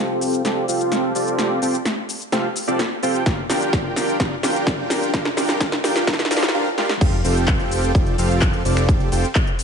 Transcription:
Already playing: C4 F4 G4 A4 G5
0.21 open hi-hat, cabasa
0.33 closed hi-hat, cabasa
0.45 C4 F4 G4 A4 D5, snare, closed hi-hat, cabasa
0.68 C4 F4 G4 A4 F5, open hi-hat, cabasa
0.80 closed hi-hat, cabasa
0.92 snare, closed hi-hat, cabasa
1.15 C4 F4 G4 A4 D5, open hi-hat, cabasa
1.27 closed hi-hat, cabasa
1.39 snare, closed hi-hat, cabasa
1.62 C4 F4 G4 A4 G5, open hi-hat, cabasa
1.74 closed hi-hat, cabasa
1.85 snare, closed hi-hat, cabasa
2.09 open hi-hat, cabasa
2.21 closed hi-hat, cabasa
2.32 C4 F4 G4 A4 F5, snare, closed hi-hat, cabasa
2.56 open hi-hat, cabasa
2.67 C4 F4 G4 A4 D5, closed hi-hat, cabasa
2.79 snare, closed hi-hat, cabasa
3.03 C4 F4 G4 A4 G5, open hi-hat, cabasa
3.14 closed hi-hat, cabasa
3.26 D4 F4 G4 A#4 F5, kick, snare, closed hi-hat, cabasa
3.50 D4 F4 G4 A#4 G5, snare, open hi-hat, cabasa
3.61 closed hi-hat, cabasa
3.73 kick, snare, closed hi-hat, cabasa
3.96 snare, open hi-hat, cabasa
4.08 closed hi-hat, cabasa
4.20 D4 F4 G4 A#4 F5, kick, snare, closed hi-hat, cabasa
4.43 D4 F4 G4 A#4 G5, snare, open hi-hat, cabasa
4.55 closed hi-hat, cabasa
4.67 kick, snare, closed hi-hat, cabasa
4.90 snare, open hi-hat, cabasa
5.02 closed hi-hat, cabasa
5.14 D4 F4 G4 A#4 F5, kick, snare, closed hi-hat, cabasa
5.25 snare
5.37 D4 F4 G4 A#4 G5, snare, open hi-hat, cabasa
5.49 snare, closed hi-hat, cabasa
5.60 D4 F4 G4 A#4 F5, kick, snare, closed hi-hat, cabasa
5.72 snare
5.84 D4 F4 G4 A#4 G5, snare, open hi-hat, cabasa
5.96 snare, closed hi-hat, cabasa
6.07 D4 F4 G4 A#4 F5, kick, snare, closed hi-hat, cabasa
6.13 snare
6.19 snare
6.25 snare
6.31 D4 F4 G4 A#4 F5, snare, open hi-hat, cabasa
6.37 snare
6.43 snare, closed hi-hat, cabasa
6.48 snare
6.54 D4 F4 G4 A#4 F5
6.78 D4 F4 G4 A#4 F5, snare
6.89 snare
7.01 F1 C4 F4 G4 A4 F5, kick, closed hi-hat, crash, cabasa
7.13 closed hi-hat
7.25 F1 C4 F4 G4 A4 G5, open hi-hat, ride, cabasa
7.37 cabasa
7.48 kick, clap, closed hi-hat, cabasa
7.60 closed hi-hat
7.71 open hi-hat, ride, cabasa
7.83 closed hi-hat, cabasa
7.95 F1 C4 F4 G4 A4 D5, kick, closed hi-hat, cabasa
8.07 closed hi-hat
8.18 F1 C4 F4 G4 A4 F5, open hi-hat, ride, cabasa
8.30 closed hi-hat, cabasa
8.41 kick, clap, closed hi-hat, cabasa
8.53 closed hi-hat
8.65 F1 C4 F4 G4 A4 D5, open hi-hat, ride, cabasa
8.77 finger snap, closed hi-hat, cabasa
8.89 kick, closed hi-hat, cabasa
9.00 closed hi-hat
9.12 F1 C4 F4 G4 A4 G5, open hi-hat, ride, cabasa
9.24 closed hi-hat, cabasa
9.35 kick, clap, closed hi-hat, cabasa
9.47 closed hi-hat
9.59 open hi-hat, ride, cabasa

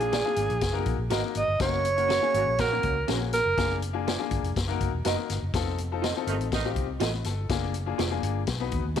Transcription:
Already playing: A#1 G#4
0.00 A#3 D4 F4 G#4, closed hi-hat
0.12 F4 G#4 D5, snare, closed hi-hat
0.24 A#3 D4 F4 G#4
0.36 G#1, closed hi-hat
0.50 A#1, closed hi-hat
0.61 F#1, kick, snare, closed hi-hat
0.72 A#3 D#4 F#4 A#4
0.86 A#1, kick, closed hi-hat
0.98 A#1
1.10 G#1 A#3 D#4 F#4 A#4 D#5, snare, closed hi-hat
1.35 G#1 D#5, closed hi-hat
1.48 G1
1.60 F#1 A#3 C#4 F#4 A#4 C#5, kick, snare, closed hi-hat
1.85 closed hi-hat
1.96 A#3 C#4 F#4 A#4, closed hi-hat
2.09 C#4 F#4 A#4, snare, closed hi-hat
2.22 A#3 C#4 F#4 G#4
2.34 G#1 C#3 F#3 A#3 F#4, closed hi-hat
2.46 A#1
2.58 C#3 F#3 A#3 F#4 A#4, kick, snare, closed hi-hat
2.72 A#3 C#4 F#4 A#4
2.83 C#2, kick, closed hi-hat
3.07 A#1 A#3 C#4 F#4 G#4 A#4, snare, closed hi-hat
3.33 A#4, snare, closed hi-hat
3.46 F#1
3.57 F#1 A#3 D4 F4 G#4, kick, snare, closed hi-hat
3.82 closed hi-hat
3.93 A#3 D4 F4 G#4
4.07 F4 G#4 D5, snare, closed hi-hat
4.18 A#3 D4 F4 G#4
4.31 G1, kick, closed hi-hat
4.43 F1, closed hi-hat
4.56 F#1, kick, snare, closed hi-hat
4.68 A#3 D#4 F#4 A#4
4.81 F#1, kick, closed hi-hat
4.92 E1
5.05 F#1 A#3 D#4 F#4 A#4 D#5, snare, closed hi-hat
5.30 G1, snare, closed hi-hat
5.42 F#1
5.54 F1 C4 D#4 F4 A4, kick, snare, closed hi-hat
5.78 closed hi-hat
5.92 C4 D#4 F4 A4
6.02 F4 A4 D#5, snare, closed hi-hat
6.16 C4 D#4 F4 A4
6.27 G1 C3 D#3 A3 D#4, closed hi-hat
6.39 A1, closed hi-hat
6.51 C3 D#3 A3 D#4, kick, snare, closed hi-hat
6.64 C4 D#4 F4 G4
6.76 C2, kick, closed hi-hat
7.00 A1 F4 A4 B4 D#5, snare, closed hi-hat
7.24 G1 A4, snare, closed hi-hat
7.49 F#1 A#3 D4 F4 G#4, kick, snare, closed hi-hat
7.74 closed hi-hat
7.86 A#3 D4 F4 G#4
7.98 F1 F4 G#4 D5, snare, closed hi-hat
8.10 A#3 D4 F4 G#4
8.23 G1, closed hi-hat
8.47 B1, kick, snare, closed hi-hat
8.60 B3 D#4 F#4 B4
8.72 D#2, kick, closed hi-hat
8.84 D#2
8.96 C#2 B3 D#4 F#4, closed hi-hat

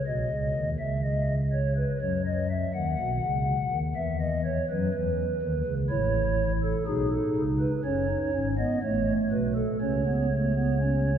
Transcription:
0.06 B1 B2 D#5
0.30 C#2 C#3
0.55 D#2 D#3
0.79 C#2 C#3 E5
1.03 D#5
1.52 C#5
1.77 B4
2.01 F#2 F#3 C#5
2.26 D#5
2.50 E5
2.74 D#2 D#3 F#5
2.99 B1 B2
3.23 C#2 C#3
3.71 D#2 D#3
3.95 E2 E3 E5
4.20 D#5
4.45 C#5
4.69 F#2 F#3 B4
4.94 E2 E3
5.41 D#2 D#3
5.66 C#2 C#3
5.89 A1 A2 E4 C#5
6.63 A4
6.87 B1 B2 D#4 G#4
7.11 A4
7.35 C#2 C#3
7.60 B4
7.84 F#1 F#2 C#4 C#5
8.09 D#4
8.33 G#1 G#2 C#4
8.57 B3 D#5
8.82 A1 A2 A3 C#5
9.31 B1 B2 B4
9.56 A4
9.81 C#2 C#3 C#4 C#5
10.06 B3
10.31 A3
10.56 B3
10.80 C#4

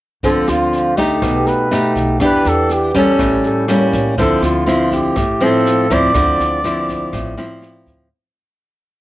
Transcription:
0.23 D2 D3 F3 C4 A4, kick, snare
0.48 D2 F4, cross-stick, snare
0.73 snare
0.97 A3 D#4 G4, kick, snare
1.22 B1 B2, kick, cross-stick, snare
1.47 B4, snare
1.71 A3 D#4 G4, snare
1.96 B1, kick, snare
2.20 E2 E3 B3 D4 G4 B4, kick, cross-stick, snare
2.45 E2 A4, snare
2.70 G4, snare
2.94 G3 C#4 A4, kick, snare
3.19 A1 A2, kick, cross-stick, snare
3.44 A4, snare
3.68 G3 A#3 C#4, cross-stick, snare
3.93 A1, kick, snare
4.18 D2 D3 F3 C4 E4 A4, kick, snare
4.42 D2 F4, cross-stick, snare
4.66 F3 C4 E4, snare
4.92 G4, kick, snare
5.16 A1 A2, kick, cross-stick, snare
5.41 F3 C4 E4 A4, snare
5.66 snare
5.90 D2 F3 C4 E4 D5, kick, snare
6.14 D2 D3 F3 C4 E4, kick, cross-stick, snare
6.40 D2, snare
6.64 F3 C4 E4, snare
6.88 kick, snare
7.13 A1 A2, kick, cross-stick, snare
7.37 F3 C4 E4, snare
7.62 cross-stick, snare
7.86 D2, kick, snare

